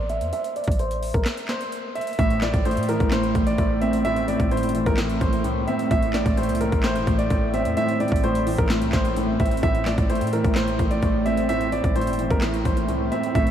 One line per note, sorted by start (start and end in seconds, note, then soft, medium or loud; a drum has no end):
0.00 0.23 A1 loud
0.09 0.31 E5 medium
0.09 closed hi-hat soft
0.21 0.32 E2 loud
0.21 closed hi-hat medium
0.33 0.54 E5 loud
0.33 closed hi-hat medium
0.44 closed hi-hat soft
0.56 0.77 D5 medium
0.56 closed hi-hat soft
0.64 1.12 A1 loud
0.64 kick loud
0.64 closed hi-hat medium
0.72 closed hi-hat medium
0.79 1.12 C5 medium
0.79 closed hi-hat medium
0.91 closed hi-hat medium
1.03 open hi-hat medium
1.14 1.26 A1 loud
1.14 1.25 A#4 medium
1.14 kick loud
1.14 closed hi-hat soft
1.25 snare loud
1.25 clap medium
1.25 closed hi-hat medium
1.37 closed hi-hat medium
1.48 1.93 C5 medium
1.48 snare loud
1.48 clap medium
1.48 closed hi-hat medium
1.61 closed hi-hat medium
1.72 closed hi-hat medium
1.95 2.17 E5 medium
1.95 closed hi-hat medium
2.01 closed hi-hat medium
2.07 closed hi-hat medium
2.13 closed hi-hat medium
2.19 2.52 A1 loud
2.19 2.41 A2 medium
2.19 2.40 E5 loud
2.19 kick loud
2.19 closed hi-hat medium
2.30 closed hi-hat soft
2.41 2.64 A2 medium
2.41 2.63 D5 medium
2.41 snare loud
2.41 clap medium
2.41 closed hi-hat medium
2.54 2.78 A1 loud
2.54 kick loud
2.54 closed hi-hat medium
2.65 3.10 A2 medium
2.65 2.87 C5 medium
2.65 closed hi-hat medium
2.71 closed hi-hat medium
2.77 2.99 A2 loud
2.77 closed hi-hat medium
2.83 closed hi-hat medium
2.89 4.05 E3 medium
2.89 3.10 A#4 medium
2.89 closed hi-hat medium
3.00 3.34 A1 loud
3.00 kick loud
3.00 closed hi-hat soft
3.11 3.33 A2 medium
3.11 3.45 C5 medium
3.11 snare loud
3.11 clap medium
3.11 closed hi-hat medium
3.23 closed hi-hat medium
3.35 3.57 A1 loud
3.35 3.57 A2 medium
3.35 kick medium
3.35 closed hi-hat medium
3.47 3.79 D5 medium
3.47 closed hi-hat medium
3.58 4.37 A1 loud
3.58 4.04 A2 medium
3.58 kick medium
3.58 closed hi-hat medium
3.81 4.98 C4 loud
3.81 4.03 E5 medium
3.81 closed hi-hat soft
3.93 closed hi-hat medium
4.05 4.27 A2 medium
4.05 4.26 E5 loud
4.05 closed hi-hat medium
4.16 closed hi-hat soft
4.28 4.50 A2 medium
4.28 4.49 D5 medium
4.28 closed hi-hat medium
4.40 4.65 A1 loud
4.40 kick medium
4.40 closed hi-hat medium
4.51 4.96 A2 medium
4.51 4.84 C5 medium
4.51 closed hi-hat medium
4.57 closed hi-hat medium
4.63 4.85 G1 loud
4.63 closed hi-hat medium
4.69 closed hi-hat medium
4.74 5.91 E3 medium
4.74 closed hi-hat medium
4.86 5.20 A1 loud
4.86 4.97 A#4 medium
4.86 kick loud
4.86 closed hi-hat soft
4.97 5.20 A2 medium
4.97 snare loud
4.97 clap loud
4.97 closed hi-hat medium
5.09 closed hi-hat medium
5.21 5.46 A1 loud
5.21 5.43 A2 medium
5.21 5.65 C5 medium
5.21 kick medium
5.21 closed hi-hat medium
5.33 closed hi-hat medium
5.44 5.67 C2 loud
5.44 5.90 A2 medium
5.44 closed hi-hat medium
5.67 5.91 C4 medium
5.67 5.89 E5 medium
5.67 closed hi-hat soft
5.79 closed hi-hat medium
5.91 6.24 A1 loud
5.91 6.12 A2 loud
5.91 6.12 E5 loud
5.91 kick loud
5.91 closed hi-hat medium
6.03 closed hi-hat soft
6.13 6.36 A2 medium
6.13 6.35 D5 medium
6.13 snare loud
6.13 clap medium
6.13 closed hi-hat medium
6.26 6.51 A1 loud
6.26 kick medium
6.26 closed hi-hat medium
6.37 6.82 A2 medium
6.37 6.59 C5 medium
6.37 closed hi-hat medium
6.43 closed hi-hat medium
6.49 6.71 C2 loud
6.49 closed hi-hat medium
6.55 closed hi-hat medium
6.60 7.77 E3 medium
6.60 6.82 A#4 medium
6.60 closed hi-hat medium
6.72 6.97 A1 loud
6.72 kick loud
6.72 closed hi-hat soft
6.83 7.05 A2 medium
6.83 7.17 C5 medium
6.83 snare loud
6.83 clap medium
6.83 closed hi-hat medium
6.96 7.07 G1 loud
6.96 closed hi-hat medium
7.07 7.30 A1 loud
7.07 7.29 A2 medium
7.07 kick medium
7.07 closed hi-hat medium
7.18 7.51 D5 medium
7.18 closed hi-hat medium
7.30 7.67 A1 loud
7.30 7.75 A2 medium
7.30 kick medium
7.30 closed hi-hat medium
7.54 8.70 C4 medium
7.54 7.75 E5 medium
7.54 closed hi-hat soft
7.65 7.76 E2 loud
7.65 closed hi-hat medium
7.77 7.99 A2 medium
7.77 7.98 E5 loud
7.77 closed hi-hat medium
7.89 closed hi-hat soft
8.00 8.22 A2 medium
8.00 8.21 D5 medium
8.00 closed hi-hat soft
8.08 8.56 A1 loud
8.08 kick loud
8.08 closed hi-hat medium
8.16 closed hi-hat medium
8.23 8.69 A2 medium
8.23 8.56 C5 medium
8.23 closed hi-hat medium
8.35 closed hi-hat medium
8.46 9.63 E3 medium
8.46 open hi-hat medium
8.58 8.83 A1 loud
8.58 8.69 A#4 medium
8.58 kick loud
8.58 closed hi-hat medium
8.69 8.92 A2 medium
8.69 snare loud
8.69 clap medium
8.69 closed hi-hat medium
8.82 8.93 C2 loud
8.82 closed hi-hat medium
8.93 9.38 A1 loud
8.93 9.15 A2 medium
8.93 9.37 C5 medium
8.93 kick medium
8.93 snare loud
8.93 clap medium
8.93 closed hi-hat medium
9.05 closed hi-hat medium
9.17 9.62 A2 medium
9.17 closed hi-hat medium
9.40 9.62 A1 loud
9.40 9.63 C4 medium
9.40 9.61 E5 medium
9.40 kick loud
9.40 closed hi-hat medium
9.46 closed hi-hat medium
9.51 closed hi-hat medium
9.57 closed hi-hat medium
9.63 9.96 A1 loud
9.63 9.85 A2 loud
9.63 9.84 E5 loud
9.63 kick loud
9.63 closed hi-hat medium
9.75 closed hi-hat soft
9.86 10.08 A2 medium
9.86 10.07 D5 medium
9.86 snare loud
9.86 clap medium
9.86 closed hi-hat medium
9.98 10.23 A1 loud
9.98 kick loud
9.98 closed hi-hat medium
10.10 10.54 A2 medium
10.10 10.31 C5 medium
10.10 closed hi-hat medium
10.15 closed hi-hat medium
10.21 10.43 A2 loud
10.21 closed hi-hat medium
10.27 closed hi-hat medium
10.33 11.49 E3 medium
10.33 10.54 A#4 medium
10.33 closed hi-hat medium
10.44 10.78 A1 loud
10.44 kick loud
10.44 closed hi-hat soft
10.55 10.77 A2 medium
10.55 10.89 C5 medium
10.55 snare loud
10.55 clap loud
10.55 closed hi-hat medium
10.68 closed hi-hat medium
10.79 11.02 A1 loud
10.79 11.01 A2 medium
10.79 kick medium
10.79 closed hi-hat medium
10.91 11.24 D5 medium
10.91 closed hi-hat medium
11.03 11.81 A1 loud
11.03 11.48 A2 medium
11.03 kick medium
11.03 closed hi-hat medium
11.26 12.42 C4 medium
11.26 11.47 E5 medium
11.26 closed hi-hat soft
11.37 closed hi-hat medium
11.49 11.71 A2 medium
11.49 11.70 E5 loud
11.49 closed hi-hat medium
11.61 closed hi-hat soft
11.72 11.94 A2 medium
11.72 11.93 D5 medium
11.72 closed hi-hat medium
11.84 12.09 A1 loud
11.84 kick medium
11.84 closed hi-hat medium
11.96 12.40 A2 medium
11.96 12.28 C5 medium
11.96 closed hi-hat medium
12.01 closed hi-hat medium
12.07 12.29 G1 loud
12.07 closed hi-hat medium
12.13 closed hi-hat medium
12.19 13.35 E3 medium
12.19 closed hi-hat medium
12.30 12.64 A1 loud
12.30 12.41 A#4 medium
12.30 kick loud
12.30 closed hi-hat soft
12.41 12.64 A2 medium
12.41 snare loud
12.41 clap loud
12.41 closed hi-hat medium
12.54 closed hi-hat medium
12.65 12.90 A1 loud
12.65 12.87 A2 medium
12.65 13.09 C5 medium
12.65 kick medium
12.65 closed hi-hat medium
12.77 closed hi-hat medium
12.88 13.11 C2 loud
12.88 13.34 A2 medium
12.88 closed hi-hat medium
13.12 13.35 C4 medium
13.12 13.33 E5 medium
13.12 closed hi-hat soft
13.23 closed hi-hat medium
13.35 13.51 A1 loud
13.35 13.51 A2 loud
13.35 13.51 E5 loud
13.35 kick loud
13.35 closed hi-hat medium
13.47 closed hi-hat soft